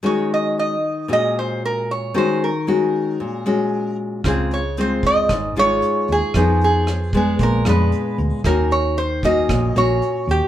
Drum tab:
HH |--------|--------|xxxxxxxx|xxxxxxxx|
SD |--------|--------|r---r---|r-r--r--|
BD |--------|--------|o--oo---|o--oo---|

HH |xxxxxxxx|
SD |r---r---|
BD |o--oo---|